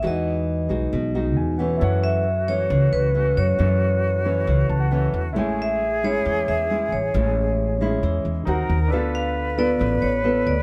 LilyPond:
<<
  \new Staff \with { instrumentName = "Vibraphone" } { \time 4/4 \key e \major \tempo 4 = 135 dis''2. r4 | \key fis \minor r8 e''4 cis''4 b'4 cis''8~ | cis''2~ cis''8 r4. | r8 e''4 cis''4 e''4 cis''8~ |
cis''2~ cis''8 r4. | r8 f''4 d''4 cis''4 d''8 | }
  \new Staff \with { instrumentName = "Grand piano" } { \time 4/4 \key e \major << { r2. gis''8 fis''8 | \key fis \minor r1 | r2 r8 a''16 fis''16 fis''4 | r1 |
r1 | r1 | } \\ { <gis' dis'' fis''>1 | <e' a' cis'' fis''>1~ | <e' a' cis'' fis''>1 | <a e' cis'' gis''>1~ |
<a e' cis'' gis''>2. <dis' ais' bis' fis''>4 | <d' a' b' f''>1 | } >> }
  \new Staff \with { instrumentName = "Flute" } { \time 4/4 \key e \major r1 | \key fis \minor fis'1~ | fis'1 | gis'1~ |
gis'2~ gis'8 r8 ais'4 | b'1 | }
  \new Staff \with { instrumentName = "Nylon-string guitar" } { \time 4/4 \key e \major << { <gis dis' fis'>4. <gis dis' fis'>4 <gis dis' fis'>4 <e a cis'>8~ | \key fis \minor <e a cis'>4 r8 <e a cis'>4. <e a cis'>4 | <e a cis'>4. <e a cis'>4. <e a cis'>8 r8 | <gis cis' e'>4 r8 <gis cis' e'>4. <gis cis' e'>8 r8 |
<gis cis' e'>4. <gis cis' e'>4. <bis fis' ais'>8 r8 | <b f' a'>4. <b f' a'>4. <b f' a'>8 r8 | } \\ { e2 b,2 | fis,2 cis2 | fis,2 cis2 | a,2 e2 |
a,2 e4 r4 | d2 a,2 | } >> }
  \new Staff \with { instrumentName = "Upright bass" } { \clef bass \time 4/4 \key e \major e,4. b,,8 b,,4 e,4 | \key fis \minor fis,2 cis,8 cis,4 fis,8 | fis,2 cis,8 cis,4 e,8 | a,,2 e,8 e,4 a,,8 |
a,,2 e,8 e,8 dis,8 dis,8 | d,2 a,,8 a,,4 d,8 | }
>>